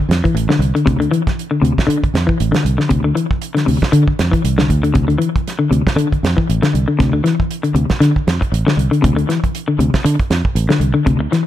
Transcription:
0.09 F2, snare, closed hi-hat
0.24 E3, kick, closed hi-hat
0.34 A1, closed hi-hat
0.49 D3, snare
0.59 C2, closed hi-hat
0.75 D3, closed hi-hat
0.86 D2 C3, kick, closed hi-hat
1.00 D3, closed hi-hat
1.11 E3, closed hi-hat
1.27 kick, snare, closed hi-hat
1.39 closed hi-hat
1.51 D3
1.62 D2 C3, closed hi-hat
1.78 kick, snare, closed hi-hat
1.87 D3, closed hi-hat
2.03 muted fingered electric bass stroke, kick, closed hi-hat
2.14 F2, snare, closed hi-hat
2.27 E3, kick
2.40 A1, closed hi-hat
2.52 D3, snare, closed hi-hat
2.65 C2, closed hi-hat
2.78 D3, snare
2.89 D2 C3, kick, closed hi-hat
3.04 D3
3.15 E3, closed hi-hat
3.31 kick
3.42 closed hi-hat
3.55 D3, snare, closed hi-hat
3.66 D2 C3, open hi-hat
3.82 kick, snare
3.92 D3, closed hi-hat
4.08 kick
4.19 F2, snare, closed hi-hat
4.32 E3, kick, closed hi-hat
4.44 C2, closed hi-hat
4.58 D3, snare
4.69 D2, kick, closed hi-hat
4.83 D3, closed hi-hat
4.94 D2 C3, kick, closed hi-hat
5.08 D3, closed hi-hat
5.18 E3, closed hi-hat
5.36 kick, closed hi-hat
5.48 snare, closed hi-hat
5.59 D3
5.71 D2 C3, closed hi-hat
5.87 kick, snare, closed hi-hat
5.96 D3, closed hi-hat
6.12 kick, closed hi-hat
6.23 F2, snare, closed hi-hat
6.37 E3, kick
6.49 A1, closed hi-hat
6.62 D3, snare, closed hi-hat
6.74 C2, closed hi-hat
6.88 D3
6.99 D2 C3, kick, snare, closed hi-hat
7.13 D3
7.24 E3, snare, closed hi-hat
7.40 kick
7.51 closed hi-hat
7.63 D3, closed hi-hat
7.75 D2 C3, closed hi-hat
7.90 kick, snare, closed hi-hat
8.00 D3, snare, closed hi-hat
8.16 muted fingered electric bass stroke, kick
8.27 F2, snare, closed hi-hat
8.41 muted clean electric guitar stroke, kick, closed hi-hat
8.52 A1, closed hi-hat
8.67 D3, snare
8.77 C2, closed hi-hat
8.91 D3, closed hi-hat
9.02 D2 C3, kick, closed hi-hat
9.16 D3, closed hi-hat
9.29 E3, snare, closed hi-hat
9.44 kick, closed hi-hat
9.55 closed hi-hat
9.68 D3
9.79 D2 C3, closed hi-hat
9.94 kick, snare, closed hi-hat
10.05 D3, muted clean electric guitar stroke, closed hi-hat
10.19 kick, closed hi-hat
10.30 F2, snare, closed hi-hat
10.45 kick
10.55 A1, closed hi-hat
10.69 D3, snare, closed hi-hat
10.80 C2, closed hi-hat
10.94 D3
11.06 D2 C3, kick, closed hi-hat
11.20 muted clean electric guitar stroke
11.32 E3, snare, closed hi-hat

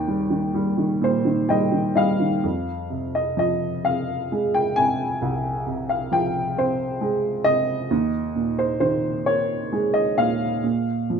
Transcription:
Already playing: D#2 D#3 G5
0.08 G3
0.30 D#3
0.54 G3
0.78 D#3
1.01 A#2 C5
1.25 D#3
1.49 G3 D#5 G5
1.72 D#3
1.95 G3 D#5 F5
2.20 D#3
2.43 F2
2.90 C3
3.15 D#5
3.37 F3 D#5
3.85 C4 F5
4.32 G#3
4.54 G5
4.76 C3 G#5
5.22 C2
5.66 C3
5.89 F5
6.12 F3 G5
6.57 C4 C5
7.01 G#3
7.44 C3 D#5
7.91 D#2
8.35 A#2
8.59 C5
8.80 D#3 C5
9.26 A#3 C#5
9.72 G#3
9.94 D#5
10.17 A#2 F5
10.64 A#2
11.10 F3

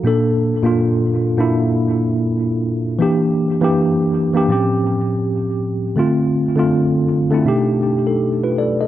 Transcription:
0.04 A#2 A#3 D4 A4
0.63 A#2 A#3 D4 F4
1.37 A#2 A#3 D4 E4
2.99 E3 A#3 D4 G4
3.61 E3 A#3 D4 G4
4.33 E3 A#3 D4 G4
4.48 A2 F3 C4 C#4 G4
5.96 D3 A3 C4 F4
6.56 D3 A3 C4 F4
7.31 D3 A3 C4 E4
7.45 B2 A3 D4 D#4 G4
7.83 D4 G4
8.07 D#4 A4
8.43 F4 B4
8.58 A4 D5
8.81 A4 D#5

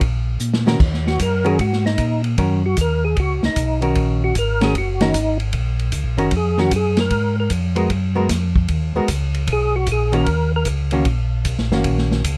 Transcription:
0.01 A#1, kick, ride
0.40 A#2, hi-hat pedal
0.54 snare
0.66 D#3 C#4 F#4 A#4, snare
0.80 D#2, kick, crash
0.94 snare
1.07 F#4, snare
1.19 F#2 A#4, kick, hi-hat pedal, ride
1.44 D#3 C#4 F#4 G#4 A#4, ride
1.59 G#2 F#4, kick, ride
1.73 snare
1.86 D#4, snare
1.98 A#2, kick, hi-hat pedal, ride
2.24 ride
2.38 F#2 D#3 C#4 F#4 A#4, kick, ride
2.66 F#4
2.77 D#2, kick, hi-hat pedal, ride
2.81 A#4
3.05 G#4
3.17 C#2 F#4, kick, ride
3.43 C#2 D#4, snare
3.56 B1, kick, hi-hat pedal, ride
3.81 D#3 C#4 F#4 A#4, ride
3.95 A#1, kick, ride
4.24 F#4
4.35 G#1 A#4, kick, hi-hat pedal, ride
4.61 D#3 C#4 F#4 G#4 A#4, snare, ride
4.75 F#1 F#4, kick, ride
5.00 D#3 C#4 D#4 F#4 A#4, snare, ride
5.14 G#1, kick, hi-hat pedal, ride
5.40 ride
5.53 A#1, kick, ride
5.79 ride
5.92 C#2, kick, hi-hat pedal, ride
6.04 A#1
6.17 F#1 D#3 C#4 F#4 A#4, ride
6.31 F2, kick, ride
6.36 G#4
6.57 D#3 C#4 F#4 A#4, snare
6.71 F#2, kick, hi-hat pedal, ride
6.76 G#4
6.97 A#4, snare, ride
7.10 G#2, kick, ride
7.40 A#4
7.50 F2, kick, hi-hat pedal, ride
7.76 G#3 B3 F#4 A#4, ride
7.90 F#2, kick, ride
8.15 G#3 B3 F#4 A#4
8.29 F2, kick, snare, hi-hat pedal, ride
8.56 kick
8.68 D#2, kick, ride
8.94 D#2 G#3 B3 F#4 A#4
9.08 C#2, kick, hi-hat pedal, ride
9.34 ride
9.47 B1, kick, ride
9.53 G#4
9.76 F#4
9.87 A#1, kick, hi-hat pedal, ride
9.92 G#4
10.12 D#3 A#3 C#4 F#4, ride
10.17 A#4
10.26 D#2, kick, ride
10.56 A#4
10.65 C#2, kick, hi-hat pedal, ride
10.91 D#3 A#3 C#4 F#4, ride
11.05 A#1, kick, ride
11.45 B1, kick, hi-hat pedal, ride
11.58 A#1, snare
11.70 F#1 D#3 A#3 C#4 F#4, snare
11.84 A#1, kick, ride
11.98 snare
12.12 snare
12.24 C#2, kick, hi-hat pedal, ride

